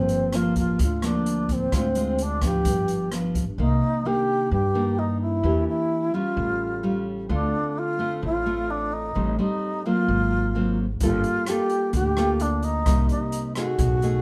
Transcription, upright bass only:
0.00 0.75 G1 loud
0.79 1.68 D2 medium
1.72 2.61 D2 loud
2.65 3.54 G1 medium
3.58 3.80 C2 medium
4.51 5.40 G2 medium
5.43 5.65 E2 medium
6.37 7.26 A1 loud
7.29 7.51 D2 medium
8.23 9.11 A1 medium
9.16 9.37 A1 medium
10.08 10.97 G#1 medium
11.00 11.22 G1 medium
11.93 12.82 D2 medium
12.86 13.08 C2 medium
13.78 14.22 B1 loud

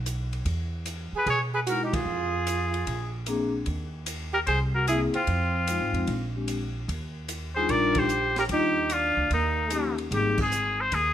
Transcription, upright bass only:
0.00 0.41 B1 medium
0.45 1.08 E2 medium
1.13 muted upright bass stroke soft
1.26 2.02 B2 medium
2.05 2.82 F2 medium
2.87 3.63 A#1 medium
3.67 4.43 D#2 medium
4.47 5.10 C2 medium
5.27 5.77 F2 medium
5.80 5.92 G#2 medium
5.93 6.06 F2 medium
6.08 6.84 A#1 medium
6.88 7.65 D#2 medium
7.69 8.45 A#1 medium
8.50 9.13 D#2 medium
9.17 9.29 D2 medium
9.31 10.07 D#2 medium
10.11 10.87 G#1 medium
10.92 11.13 D#2 medium

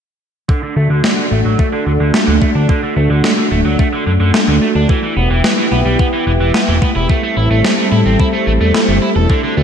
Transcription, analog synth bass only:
0.76 0.88 D2 medium
0.90 1.02 D2 medium
1.31 1.43 A1 medium
1.45 1.57 A1 medium
1.86 1.98 D2 medium
2.00 2.12 D2 medium
2.28 2.40 D2 medium
2.55 2.67 D2 medium
2.97 3.09 D2 medium
3.10 3.22 D2 medium
3.52 3.64 D1 medium
3.65 3.77 D2 medium
4.07 4.19 F#2 medium
4.20 4.32 F#2 medium
4.48 4.60 D2 medium
4.75 4.87 D2 medium
5.17 5.29 E1 medium
5.30 5.42 E1 medium
5.72 5.84 B1 medium
5.85 5.97 B1 medium
6.27 6.39 E1 medium
6.41 6.53 E1 medium
6.68 6.80 E1 medium
6.96 7.08 E1 medium
7.37 7.49 A1 medium
7.51 7.63 A1 medium
7.92 8.04 A2 medium
8.06 8.18 A1 medium
8.47 8.59 A1 medium
8.61 8.73 E2 medium
8.88 9.00 G1 medium
9.16 9.28 E1 medium
9.57 9.63 D2 medium

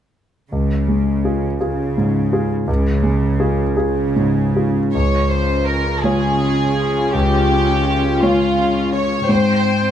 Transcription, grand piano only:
0.52 2.64 C#2 soft
0.88 1.47 G#3 soft
1.25 1.58 F4 soft
1.25 1.58 G#4 soft
1.60 1.93 F4 soft
1.60 1.94 G#4 soft
1.98 2.54 G#2 soft
2.33 2.64 F4 soft
2.33 2.65 G#4 soft
2.67 4.90 C#2 soft
3.03 3.62 G#3 soft
3.40 3.74 F4 soft
3.40 3.74 G#4 soft
3.76 4.12 F4 soft
3.76 4.12 G#4 soft
4.16 4.79 G#2 soft
4.56 4.90 F4 soft
4.56 4.91 G#4 soft
4.95 6.01 C#2 soft
6.04 7.10 G#3 soft
6.04 7.10 F4 soft
6.04 7.11 C#5 soft
7.14 8.19 C#2 soft
8.22 9.26 G#3 soft
8.22 9.26 F4 soft
8.22 9.26 C#5 soft
9.29 9.91 G#2 soft

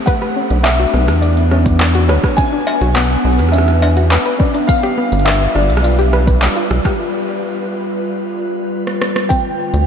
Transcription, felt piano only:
0.06 0.66 F#5 loud
0.63 1.24 E5 loud
1.21 2.11 D5 loud
2.08 2.38 C#5 medium
2.37 2.97 G#5 loud
2.94 3.49 F#5 loud
3.52 4.42 E5 loud
4.39 4.69 D5 medium
4.67 5.27 F5 loud
5.25 5.56 E5 loud
5.54 5.81 D5 medium
5.83 6.95 D5 medium
9.29 9.87 G5 loud

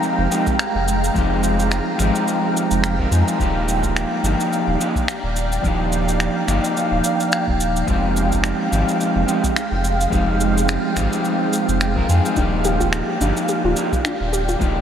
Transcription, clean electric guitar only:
0.00 0.28 F3 medium
0.00 0.28 G#3 medium
0.00 0.29 C4 medium
0.00 0.29 D#4 medium
0.00 0.29 G4 medium
0.30 0.54 F3 medium
0.30 0.54 G#3 medium
0.30 0.54 C4 medium
0.30 0.55 D#4 medium
0.30 0.55 G4 medium
1.14 1.96 F3 medium
1.14 1.96 G#3 medium
1.14 1.97 C4 medium
1.14 1.97 D#4 medium
1.14 1.98 G4 medium
1.98 2.95 F3 medium
1.98 2.96 G#3 medium
1.98 2.96 C4 medium
1.98 2.97 D#4 medium
1.98 2.97 G4 medium
2.99 3.08 F3 medium
2.99 3.09 G#3 medium
2.99 3.09 C4 medium
2.99 3.09 D#4 medium
2.99 3.09 A#4 medium
3.11 3.36 F3 medium
3.11 3.37 G#3 medium
3.11 3.37 C4 medium
3.11 3.37 D#4 medium
3.11 3.37 G#4 medium
3.38 4.20 F3 medium
3.38 4.21 A#3 medium
3.38 4.21 D4 medium
3.38 4.22 D#4 medium
3.42 4.22 G4 loud
4.24 4.77 F3 medium
4.24 4.77 A#3 medium
4.24 4.77 D4 medium
4.24 4.78 D#4 medium
4.24 4.78 G4 medium
4.79 5.03 F3 medium
4.79 5.03 A#3 medium
4.79 5.04 D4 medium
4.79 5.04 D#4 medium
4.79 5.04 G4 medium
5.62 6.44 F3 medium
5.62 6.45 A#3 medium
5.62 6.45 D4 medium
5.62 6.46 D#4 medium
5.66 6.46 G4 medium
6.46 7.84 F3 medium
6.46 7.85 A#3 medium
6.46 7.85 D4 medium
6.46 7.86 D#4 medium
6.51 7.87 G4 medium
7.86 8.69 F3 medium
7.86 8.69 G#3 medium
7.86 8.70 C4 medium
7.86 8.70 D#4 medium
7.86 8.70 G4 loud
8.71 9.25 F3 medium
8.71 9.25 G#3 medium
8.71 9.25 C4 medium
8.71 9.26 D#4 medium
8.71 9.26 G4 medium
9.27 9.51 F3 medium
9.27 9.51 G#3 medium
9.27 9.51 C4 medium
9.27 9.51 D#4 medium
9.27 9.52 G4 medium
10.10 10.93 F3 medium
10.10 10.93 G#3 medium
10.10 10.94 C4 medium
10.10 10.94 D#4 medium
10.10 10.95 G4 loud
10.94 11.92 F3 medium
10.94 11.93 G#3 medium
10.94 11.93 C4 medium
10.94 11.94 D#4 medium
10.98 11.94 G4 medium
11.95 12.05 F3 medium
11.95 12.06 G#3 medium
11.95 12.06 C4 medium
11.95 12.06 D#4 medium
11.95 12.07 A#4 medium
12.08 12.34 F3 medium
12.08 12.34 G#3 medium
12.08 12.34 C4 medium
12.08 12.34 D#4 medium
12.08 12.35 G#4 medium
12.35 13.17 F3 medium
12.35 13.18 A#3 medium
12.35 13.18 D4 medium
12.35 13.19 D#4 medium
12.39 13.19 G4 medium
13.20 13.74 F3 medium
13.20 13.74 A#3 medium
13.20 13.74 D4 medium
13.20 13.74 D#4 medium
13.20 13.75 G4 medium
13.76 14.00 F3 medium
13.76 14.00 A#3 medium
13.76 14.00 D4 medium
13.76 14.00 D#4 medium
13.76 14.01 G4 medium
14.59 14.81 F3 medium
14.59 14.81 A#3 medium
14.59 14.81 D4 medium
14.59 14.81 D#4 medium
14.63 14.81 G4 medium

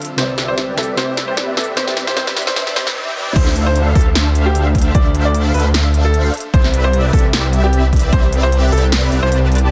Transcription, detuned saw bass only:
0.18 0.76 C2 loud
0.78 0.96 C2 loud
0.97 1.55 C2 loud
1.57 1.75 C2 loud
1.77 2.15 C2 loud
2.17 2.55 C2 loud
2.56 2.74 C2 loud
2.76 2.94 C2 loud
3.36 3.94 D2 loud
3.95 4.93 D2 loud
4.95 5.53 D2 loud
5.54 6.31 D2 loud
6.54 7.11 C2 loud
7.13 8.11 C2 loud
8.13 8.70 C2 loud
8.72 9.10 C2 loud
9.12 9.21 C2 loud
9.23 9.70 C2 medium

